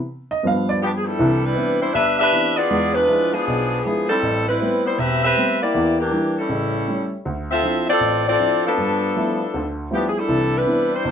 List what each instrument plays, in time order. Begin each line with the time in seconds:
0.31 grand piano D#5
0.43 grand piano G2 F3 B3 F5
0.69 grand piano D5
0.82 saxophone section F3 B3 D4 G4
0.97 saxophone section G#4
1.05 saxophone section G3 D4 E4 A4
1.19 grand piano C2 E3
1.44 saxophone section G3 D4 E4 B4
1.55 grand piano E3 B3 C4 D4
1.81 saxophone section G3 D4 E4 C5
1.93 grand piano G1, saxophone section D4 G4 B4 E5
2.20 saxophone section D4 G4 B4 E5
2.32 grand piano E3 B3 C4 D4
2.57 saxophone section B3 F4 G#4 D5
2.70 grand piano E2 G#3
2.95 saxophone section G#3 D4 F4 B4
3.08 grand piano F3 G#3 D4 E4
3.33 saxophone section F3 B3 D4 G#4
3.47 grand piano B1
3.81 saxophone section F3 B3 D4 G4 G#4
3.85 grand piano F3 G#3 D4 E4
4.09 saxophone section G3 C4 E4 A4
4.23 grand piano A1
4.48 saxophone section G3 C4 E4 B4
4.61 grand piano G3 A3 B3 C4
4.85 saxophone section G3 B3 E4 C5
4.98 grand piano E1, saxophone section C4 G4 B4 E5
5.23 saxophone section C4 G4 B4 E5
5.37 grand piano G3 A3 B3 C4
5.62 saxophone section A#3 E4 G4 D5
5.74 grand piano E2 E3
6.00 saxophone section E3 A#3 D4 G4
6.11 grand piano E3 G3 D4
6.39 saxophone section G3 C#4 E4 A4
6.49 grand piano A1 C#3
6.87 grand piano G3 A3 C#4
7.25 grand piano D2
7.51 saxophone section C4 F4 A4 E5
7.63 grand piano F3 C4 D4 E4
7.90 saxophone section C4 F4 A4 D5
8.00 grand piano A1
8.28 saxophone section C4 F4 A4 D5
8.39 grand piano F3 C4 D4 E4
8.67 saxophone section F3 B3 D4 A4
8.78 grand piano G2
9.16 grand piano F3 G3 A3 B3 E4
9.54 grand piano D2 D3
9.91 grand piano F3 G3 A3 B3 E4, saxophone section F3 B3 D4 G4
10.08 saxophone section G#4
10.18 saxophone section G3 D4 E4 A4
10.28 grand piano C2 E3
10.57 saxophone section G3 D4 E4 B4
10.66 grand piano E3 B3 C4 D4
10.94 saxophone section G3 D4 E4 C5
11.05 grand piano G1